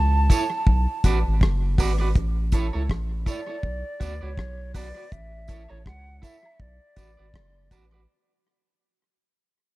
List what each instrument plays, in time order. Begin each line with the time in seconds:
Already playing: sub bass C#2, flute A5
0.30 clean electric guitar E4 A4 C#5, kick, closed hi-hat, tambourine
0.67 sub bass B1, kick
1.04 sub bass A1, clean electric guitar F#4 B4 D5, kick, closed hi-hat, tambourine
1.27 sub bass G#1
1.41 sub bass F#1, kick, cross-stick
1.78 sub bass G#1, clean electric guitar F#4 B4 D5, kick, open hi-hat, tambourine, high woodblock
2.00 clean electric guitar F#4 B4 D5
2.15 sub bass A1, kick, hi-hat pedal
2.52 clean electric guitar E4 A4 C#5, kick, closed hi-hat, tambourine
2.73 sub bass C#2, clean electric guitar E4 A4 C#5, high woodblock
2.90 sub bass A1, kick, cross-stick
3.26 clean electric guitar E4 A4 C#5, flute D5, kick, closed hi-hat, tambourine
3.47 clean electric guitar E4 A4 C#5
3.63 sub bass B1, kick
4.00 sub bass D2, clean electric guitar F#4 B4 D5, kick, closed hi-hat, tambourine
4.21 sub bass C#2, clean electric guitar F#4 B4 D5, flute C#5
4.38 sub bass B1, kick, cross-stick
4.74 clean electric guitar F#4 B4 D5, flute D5, kick, open hi-hat, tambourine, high woodblock
4.95 clean electric guitar F#4 B4 D5
5.12 sub bass A1, flute E5, kick, hi-hat pedal
5.48 clean electric guitar E4 A4 C#5, kick, closed hi-hat, tambourine
5.69 sub bass A1, clean electric guitar E4 A4 C#5, flute C#5, high woodblock
5.86 sub bass C#2, flute F#5, kick, cross-stick
6.22 clean electric guitar E4 A4 C#5, flute E5, kick, closed hi-hat, tambourine
6.45 high woodblock
6.60 sub bass B1, flute D5, kick
6.96 sub bass A1, clean electric guitar F#4 B4 D5, kick, closed hi-hat, tambourine
7.17 sub bass G#1, clean electric guitar F#4 B4 D5
7.34 sub bass F#1, kick, cross-stick
7.71 sub bass A1, clean electric guitar F#4 B4 D5, kick, closed hi-hat, tambourine, high woodblock
7.92 clean electric guitar F#4 B4 D5